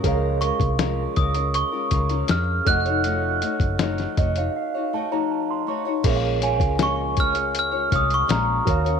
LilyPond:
<<
  \new Staff \with { instrumentName = "Glockenspiel" } { \time 4/4 \key bes \minor \tempo 4 = 80 r8 des'''4 ees'''8 des'''4 f'''8 ges'''8~ | ges'''2.~ ges'''8 r8 | r8 aes''8 des'''8 f'''8 f'''8 ees'''16 des'''16 bes''4 | }
  \new Staff \with { instrumentName = "Tine electric piano" } { \time 4/4 \key bes \minor << { r1 | r4. ees''16 f''16 f''8 a''16 bes''16 a''16 c'''16 des'''8 | r1 | } \\ { <aes' bes' des'' f''>2.~ <aes' bes' des'' f''>8 <a' des'' ees'' ges''>8~ | <a' des'' ees'' ges''>2.~ <a' des'' ees'' ges''>8 r8 | <aes' bes' des'' e'' f''>2.~ <aes' bes' des'' e'' f''>8 <ges' bes' des'' f''>8 | } >> }
  \new Staff \with { instrumentName = "Nylon-string guitar" } { \time 4/4 \key bes \minor <des f aes des' f' bes'>8 <aes des' f' bes'>8 <f aes des' f' bes'>8 <aes des' f' bes'>16 <aes des' f' bes'>8 <aes des' f' bes'>16 <aes des' f' bes'>16 <des f aes des' f' bes'>8. <a ees' ges' des''>16 <ees' ges' des''>16 | <f a ees' ges' des''>8 <a ees' ges' des''>8 <f a ees' ges' des''>8 <a ees' ges' des''>16 <ees' ges' des''>8 <ees' ges' des''>16 <a ees' ges' des''>16 <f a ees' ges' des''>8. <a ees' ges' des''>16 <ees' ges' des''>16 | <bes, f aes des' f' des''>8 <aes des' f' des''>16 <aes des' f' des''>16 <bes, f aes des' f' des''>8 <aes des' f' des''>16 <aes des' f' des''>8 <aes des' f' des''>16 <aes des' f' des''>8 <bes, f aes des' f' des''>8 <bes des' ges' des''>16 <des' ges' des''>16 | }
  \new Staff \with { instrumentName = "Fingered electric bass" } { \clef bass \time 4/4 \key bes \minor des,8. c,8. des,8. r16 des,8 f,8 f,,8~ | f,,8. ges,,8. f,,8 r2 | bes,,8. des,4.~ des,16 c,8 bes,,8 ees,8 | }
  \new DrumStaff \with { instrumentName = "Drums" } \drummode { \time 4/4 <hh bd>8 hh16 <hh bd>16 <hh sn>8 <hh bd>16 hh16 hh8 <hh bd>16 hh16 <hh sn>8 <hh bd>16 hh16 | hh8 hh16 <hh bd>16 <hh sn>16 <hh sn>16 <hh bd>16 hh16 r4 r4 | <cymc hh bd>8 hh16 <hh bd>16 <hh sn>8 <hh bd>16 hh16 hh8 <hh bd>16 hh16 <hh sn>8 <hh bd>16 hh16 | }
>>